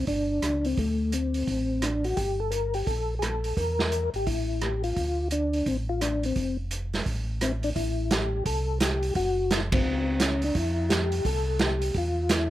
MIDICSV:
0, 0, Header, 1, 4, 480
1, 0, Start_track
1, 0, Key_signature, -1, "minor"
1, 0, Tempo, 349040
1, 1064, Time_signature, 4, 2, 24, 8
1, 17190, End_track
2, 0, Start_track
2, 0, Title_t, "Tonewheel organ"
2, 0, Program_c, 0, 16
2, 107, Note_on_c, 0, 62, 74
2, 901, Note_on_c, 0, 60, 68
2, 912, Note_off_c, 0, 62, 0
2, 1077, Note_off_c, 0, 60, 0
2, 1082, Note_on_c, 0, 57, 65
2, 1559, Note_on_c, 0, 60, 68
2, 1568, Note_off_c, 0, 57, 0
2, 2513, Note_on_c, 0, 62, 67
2, 2542, Note_off_c, 0, 60, 0
2, 2813, Note_on_c, 0, 66, 72
2, 2821, Note_off_c, 0, 62, 0
2, 2977, Note_off_c, 0, 66, 0
2, 2984, Note_on_c, 0, 67, 73
2, 3297, Note_off_c, 0, 67, 0
2, 3301, Note_on_c, 0, 69, 78
2, 3446, Note_on_c, 0, 70, 78
2, 3461, Note_off_c, 0, 69, 0
2, 3768, Note_off_c, 0, 70, 0
2, 3775, Note_on_c, 0, 67, 74
2, 3938, Note_off_c, 0, 67, 0
2, 3947, Note_on_c, 0, 69, 80
2, 4327, Note_off_c, 0, 69, 0
2, 4387, Note_on_c, 0, 68, 57
2, 4434, Note_on_c, 0, 69, 75
2, 4443, Note_off_c, 0, 68, 0
2, 4910, Note_on_c, 0, 70, 80
2, 4925, Note_off_c, 0, 69, 0
2, 5637, Note_off_c, 0, 70, 0
2, 5718, Note_on_c, 0, 67, 75
2, 5867, Note_on_c, 0, 64, 72
2, 5871, Note_off_c, 0, 67, 0
2, 6356, Note_on_c, 0, 67, 73
2, 6362, Note_off_c, 0, 64, 0
2, 6634, Note_off_c, 0, 67, 0
2, 6653, Note_on_c, 0, 65, 78
2, 7264, Note_off_c, 0, 65, 0
2, 7317, Note_on_c, 0, 62, 77
2, 7802, Note_on_c, 0, 60, 72
2, 7808, Note_off_c, 0, 62, 0
2, 7935, Note_off_c, 0, 60, 0
2, 8105, Note_on_c, 0, 65, 75
2, 8265, Note_off_c, 0, 65, 0
2, 8274, Note_on_c, 0, 62, 67
2, 8583, Note_off_c, 0, 62, 0
2, 8603, Note_on_c, 0, 60, 65
2, 9035, Note_off_c, 0, 60, 0
2, 10206, Note_on_c, 0, 60, 60
2, 10338, Note_off_c, 0, 60, 0
2, 10510, Note_on_c, 0, 62, 59
2, 10586, Note_off_c, 0, 62, 0
2, 10667, Note_on_c, 0, 64, 69
2, 11163, Note_off_c, 0, 64, 0
2, 11168, Note_on_c, 0, 67, 75
2, 11606, Note_off_c, 0, 67, 0
2, 11637, Note_on_c, 0, 69, 76
2, 12080, Note_off_c, 0, 69, 0
2, 12129, Note_on_c, 0, 67, 69
2, 12567, Note_off_c, 0, 67, 0
2, 12601, Note_on_c, 0, 66, 77
2, 13080, Note_on_c, 0, 64, 73
2, 13090, Note_off_c, 0, 66, 0
2, 13214, Note_off_c, 0, 64, 0
2, 13389, Note_on_c, 0, 60, 76
2, 14056, Note_on_c, 0, 61, 72
2, 14058, Note_off_c, 0, 60, 0
2, 14353, Note_off_c, 0, 61, 0
2, 14360, Note_on_c, 0, 62, 75
2, 14515, Note_on_c, 0, 64, 76
2, 14528, Note_off_c, 0, 62, 0
2, 14981, Note_on_c, 0, 67, 81
2, 15006, Note_off_c, 0, 64, 0
2, 15479, Note_off_c, 0, 67, 0
2, 15487, Note_on_c, 0, 69, 82
2, 15972, Note_off_c, 0, 69, 0
2, 15972, Note_on_c, 0, 67, 86
2, 16454, Note_off_c, 0, 67, 0
2, 16472, Note_on_c, 0, 65, 79
2, 16943, Note_off_c, 0, 65, 0
2, 16948, Note_on_c, 0, 64, 81
2, 17190, Note_off_c, 0, 64, 0
2, 17190, End_track
3, 0, Start_track
3, 0, Title_t, "Tonewheel organ"
3, 0, Program_c, 1, 16
3, 97, Note_on_c, 1, 31, 68
3, 547, Note_off_c, 1, 31, 0
3, 580, Note_on_c, 1, 37, 60
3, 1029, Note_off_c, 1, 37, 0
3, 1063, Note_on_c, 1, 38, 65
3, 1977, Note_off_c, 1, 38, 0
3, 2024, Note_on_c, 1, 33, 64
3, 2938, Note_off_c, 1, 33, 0
3, 2979, Note_on_c, 1, 31, 65
3, 3895, Note_off_c, 1, 31, 0
3, 3940, Note_on_c, 1, 34, 64
3, 4856, Note_off_c, 1, 34, 0
3, 4905, Note_on_c, 1, 40, 69
3, 5634, Note_off_c, 1, 40, 0
3, 5691, Note_on_c, 1, 32, 54
3, 5856, Note_off_c, 1, 32, 0
3, 5869, Note_on_c, 1, 33, 66
3, 6782, Note_off_c, 1, 33, 0
3, 6822, Note_on_c, 1, 38, 65
3, 7738, Note_off_c, 1, 38, 0
3, 7780, Note_on_c, 1, 33, 65
3, 8697, Note_off_c, 1, 33, 0
3, 8744, Note_on_c, 1, 29, 65
3, 9659, Note_off_c, 1, 29, 0
3, 9707, Note_on_c, 1, 33, 66
3, 10621, Note_off_c, 1, 33, 0
3, 10661, Note_on_c, 1, 33, 75
3, 11578, Note_off_c, 1, 33, 0
3, 11624, Note_on_c, 1, 36, 79
3, 12539, Note_off_c, 1, 36, 0
3, 12587, Note_on_c, 1, 30, 77
3, 13500, Note_off_c, 1, 30, 0
3, 13551, Note_on_c, 1, 37, 75
3, 14462, Note_off_c, 1, 37, 0
3, 14505, Note_on_c, 1, 41, 74
3, 15419, Note_off_c, 1, 41, 0
3, 15468, Note_on_c, 1, 36, 79
3, 16379, Note_off_c, 1, 36, 0
3, 16426, Note_on_c, 1, 40, 73
3, 17190, Note_off_c, 1, 40, 0
3, 17190, End_track
4, 0, Start_track
4, 0, Title_t, "Drums"
4, 97, Note_on_c, 9, 46, 34
4, 101, Note_on_c, 9, 36, 25
4, 234, Note_off_c, 9, 46, 0
4, 238, Note_off_c, 9, 36, 0
4, 583, Note_on_c, 9, 42, 42
4, 586, Note_on_c, 9, 37, 47
4, 721, Note_off_c, 9, 42, 0
4, 723, Note_off_c, 9, 37, 0
4, 889, Note_on_c, 9, 46, 27
4, 1026, Note_off_c, 9, 46, 0
4, 1064, Note_on_c, 9, 46, 32
4, 1066, Note_on_c, 9, 36, 28
4, 1202, Note_off_c, 9, 46, 0
4, 1204, Note_off_c, 9, 36, 0
4, 1546, Note_on_c, 9, 42, 42
4, 1683, Note_off_c, 9, 42, 0
4, 1844, Note_on_c, 9, 46, 29
4, 1982, Note_off_c, 9, 46, 0
4, 2028, Note_on_c, 9, 36, 25
4, 2028, Note_on_c, 9, 46, 34
4, 2165, Note_off_c, 9, 36, 0
4, 2166, Note_off_c, 9, 46, 0
4, 2502, Note_on_c, 9, 42, 42
4, 2505, Note_on_c, 9, 37, 51
4, 2640, Note_off_c, 9, 42, 0
4, 2643, Note_off_c, 9, 37, 0
4, 2809, Note_on_c, 9, 46, 30
4, 2946, Note_off_c, 9, 46, 0
4, 2984, Note_on_c, 9, 46, 36
4, 2986, Note_on_c, 9, 36, 27
4, 3121, Note_off_c, 9, 46, 0
4, 3124, Note_off_c, 9, 36, 0
4, 3461, Note_on_c, 9, 42, 40
4, 3598, Note_off_c, 9, 42, 0
4, 3765, Note_on_c, 9, 46, 29
4, 3902, Note_off_c, 9, 46, 0
4, 3945, Note_on_c, 9, 36, 26
4, 3947, Note_on_c, 9, 46, 33
4, 4083, Note_off_c, 9, 36, 0
4, 4085, Note_off_c, 9, 46, 0
4, 4431, Note_on_c, 9, 42, 42
4, 4434, Note_on_c, 9, 37, 50
4, 4568, Note_off_c, 9, 42, 0
4, 4571, Note_off_c, 9, 37, 0
4, 4731, Note_on_c, 9, 46, 30
4, 4868, Note_off_c, 9, 46, 0
4, 4908, Note_on_c, 9, 36, 28
4, 4911, Note_on_c, 9, 46, 35
4, 5045, Note_off_c, 9, 36, 0
4, 5048, Note_off_c, 9, 46, 0
4, 5214, Note_on_c, 9, 38, 41
4, 5352, Note_off_c, 9, 38, 0
4, 5389, Note_on_c, 9, 42, 42
4, 5527, Note_off_c, 9, 42, 0
4, 5689, Note_on_c, 9, 46, 28
4, 5827, Note_off_c, 9, 46, 0
4, 5867, Note_on_c, 9, 46, 34
4, 5870, Note_on_c, 9, 36, 28
4, 6005, Note_off_c, 9, 46, 0
4, 6007, Note_off_c, 9, 36, 0
4, 6346, Note_on_c, 9, 42, 44
4, 6349, Note_on_c, 9, 37, 50
4, 6484, Note_off_c, 9, 42, 0
4, 6486, Note_off_c, 9, 37, 0
4, 6650, Note_on_c, 9, 46, 29
4, 6788, Note_off_c, 9, 46, 0
4, 6827, Note_on_c, 9, 46, 35
4, 6828, Note_on_c, 9, 36, 26
4, 6965, Note_off_c, 9, 46, 0
4, 6966, Note_off_c, 9, 36, 0
4, 7300, Note_on_c, 9, 42, 42
4, 7437, Note_off_c, 9, 42, 0
4, 7610, Note_on_c, 9, 46, 29
4, 7747, Note_off_c, 9, 46, 0
4, 7788, Note_on_c, 9, 36, 28
4, 7788, Note_on_c, 9, 46, 37
4, 7925, Note_off_c, 9, 36, 0
4, 7925, Note_off_c, 9, 46, 0
4, 8269, Note_on_c, 9, 42, 44
4, 8272, Note_on_c, 9, 37, 49
4, 8407, Note_off_c, 9, 42, 0
4, 8410, Note_off_c, 9, 37, 0
4, 8573, Note_on_c, 9, 46, 30
4, 8710, Note_off_c, 9, 46, 0
4, 8743, Note_on_c, 9, 46, 34
4, 8746, Note_on_c, 9, 36, 27
4, 8880, Note_off_c, 9, 46, 0
4, 8883, Note_off_c, 9, 36, 0
4, 9226, Note_on_c, 9, 42, 42
4, 9363, Note_off_c, 9, 42, 0
4, 9537, Note_on_c, 9, 46, 29
4, 9540, Note_on_c, 9, 38, 27
4, 9675, Note_off_c, 9, 46, 0
4, 9677, Note_off_c, 9, 38, 0
4, 9709, Note_on_c, 9, 36, 26
4, 9711, Note_on_c, 9, 46, 35
4, 9847, Note_off_c, 9, 36, 0
4, 9848, Note_off_c, 9, 46, 0
4, 10191, Note_on_c, 9, 42, 43
4, 10194, Note_on_c, 9, 37, 51
4, 10329, Note_off_c, 9, 42, 0
4, 10332, Note_off_c, 9, 37, 0
4, 10492, Note_on_c, 9, 46, 29
4, 10629, Note_off_c, 9, 46, 0
4, 10669, Note_on_c, 9, 36, 29
4, 10669, Note_on_c, 9, 46, 39
4, 10807, Note_off_c, 9, 36, 0
4, 10807, Note_off_c, 9, 46, 0
4, 11149, Note_on_c, 9, 42, 47
4, 11152, Note_on_c, 9, 38, 59
4, 11287, Note_off_c, 9, 42, 0
4, 11290, Note_off_c, 9, 38, 0
4, 11629, Note_on_c, 9, 46, 41
4, 11630, Note_on_c, 9, 36, 30
4, 11767, Note_off_c, 9, 36, 0
4, 11767, Note_off_c, 9, 46, 0
4, 12108, Note_on_c, 9, 42, 51
4, 12111, Note_on_c, 9, 38, 58
4, 12245, Note_off_c, 9, 42, 0
4, 12248, Note_off_c, 9, 38, 0
4, 12413, Note_on_c, 9, 46, 35
4, 12550, Note_off_c, 9, 46, 0
4, 12586, Note_on_c, 9, 46, 42
4, 12590, Note_on_c, 9, 36, 31
4, 12724, Note_off_c, 9, 46, 0
4, 12727, Note_off_c, 9, 36, 0
4, 13073, Note_on_c, 9, 42, 48
4, 13076, Note_on_c, 9, 38, 60
4, 13211, Note_off_c, 9, 42, 0
4, 13213, Note_off_c, 9, 38, 0
4, 13370, Note_on_c, 9, 36, 70
4, 13370, Note_on_c, 9, 51, 65
4, 13507, Note_off_c, 9, 51, 0
4, 13508, Note_off_c, 9, 36, 0
4, 14024, Note_on_c, 9, 42, 50
4, 14027, Note_on_c, 9, 38, 57
4, 14161, Note_off_c, 9, 42, 0
4, 14164, Note_off_c, 9, 38, 0
4, 14326, Note_on_c, 9, 46, 34
4, 14464, Note_off_c, 9, 46, 0
4, 14506, Note_on_c, 9, 46, 42
4, 14509, Note_on_c, 9, 36, 30
4, 14644, Note_off_c, 9, 46, 0
4, 14647, Note_off_c, 9, 36, 0
4, 14993, Note_on_c, 9, 42, 50
4, 14996, Note_on_c, 9, 38, 62
4, 15131, Note_off_c, 9, 42, 0
4, 15133, Note_off_c, 9, 38, 0
4, 15290, Note_on_c, 9, 46, 36
4, 15428, Note_off_c, 9, 46, 0
4, 15470, Note_on_c, 9, 36, 31
4, 15470, Note_on_c, 9, 46, 43
4, 15607, Note_off_c, 9, 36, 0
4, 15608, Note_off_c, 9, 46, 0
4, 15943, Note_on_c, 9, 42, 49
4, 15946, Note_on_c, 9, 38, 60
4, 16081, Note_off_c, 9, 42, 0
4, 16083, Note_off_c, 9, 38, 0
4, 16249, Note_on_c, 9, 46, 36
4, 16386, Note_off_c, 9, 46, 0
4, 16422, Note_on_c, 9, 46, 40
4, 16428, Note_on_c, 9, 36, 31
4, 16560, Note_off_c, 9, 46, 0
4, 16565, Note_off_c, 9, 36, 0
4, 16906, Note_on_c, 9, 42, 50
4, 16908, Note_on_c, 9, 38, 60
4, 17043, Note_off_c, 9, 42, 0
4, 17046, Note_off_c, 9, 38, 0
4, 17190, End_track
0, 0, End_of_file